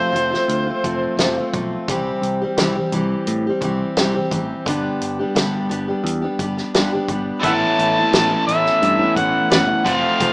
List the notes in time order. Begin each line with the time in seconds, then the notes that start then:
Already playing: F2 C3 F3 A3 C4 F4 C5
0.12 F1 F3 A3 C4, closed hi-hat
0.17 F4
0.31 F3 A3 C4 F4, snare
0.48 D2, closed hi-hat
0.67 F3 A3 C4 F4
0.84 F1 F3 A3 C4 F4, kick, closed hi-hat
1.17 F1 F2 C3 F3 A3 C4, snare, closed hi-hat
1.21 F4
1.38 F3 A3 C4 F4
1.54 B1 F3 A3 C4, kick, closed hi-hat
1.58 F4
1.88 C2 C3 E3 G3 C4 G4, kick, closed hi-hat
2.22 C2, closed hi-hat
2.42 G3 C4 G4
2.57 C2 C3 E3 G3 C4 G4, snare, closed hi-hat
2.75 G3 C4 G4
2.92 C2 E3 G3 G4, closed hi-hat
2.96 C4
3.27 A2, closed hi-hat
3.47 G3 C4 G4
3.61 C2 E3 G3 C4, kick, closed hi-hat
3.65 G4
3.97 C2 C3 E3 G3 C4 G4, snare, closed hi-hat
4.14 G3 C4 G4
4.31 A1 E3 G3 C4 G4, kick, closed hi-hat
4.66 G1 G2 D3 G3 B3 D4 G4, kick, closed hi-hat
5.01 G1, closed hi-hat
5.19 G3 B3 D4 G4
5.35 G1 G2 D3 G3 B3 D4 G4, snare, closed hi-hat
5.69 G1 G3 B3 D4 G4, closed hi-hat
5.88 G3 B3 D4 G4
6.04 E2, closed hi-hat
6.22 G3 B3 D4 G4
6.39 G1 G3 B3 D4 G4, kick, closed hi-hat
6.57 snare
6.74 G1 G2 D3 G3 B3 D4 G4, snare, closed hi-hat
6.93 B3 D4 G4
6.97 G3
7.08 G1 G3 B3 D4, kick, closed hi-hat
7.13 G4
7.42 A1 A2 E3 A3 B3 C#4 E5 F#5 A5, kick, closed hi-hat
7.47 E4
7.79 A1, closed hi-hat
7.98 B3 C#4 E4
8.12 A1 A2 E3 B3 E4, snare, closed hi-hat
8.16 C#4
8.30 B3 E4
8.47 A1 E3 B3 E5, closed hi-hat
8.51 C#4 E4
8.66 snare
8.82 G2, closed hi-hat
8.98 B3 C#4 E4
9.15 A1 E3 B3 C#4 E4 F#5, kick, closed hi-hat
9.49 F#1 A2 E3 B3 C#4 E4 B4 D5 F#5, snare, closed hi-hat
9.68 B3 C#4 E4
9.84 F1 F2 C3 F3 A3 C4 F4 F5, kick, closed hi-hat
10.19 F1 F2 C3 F3 A3 C4 F4, kick, closed hi-hat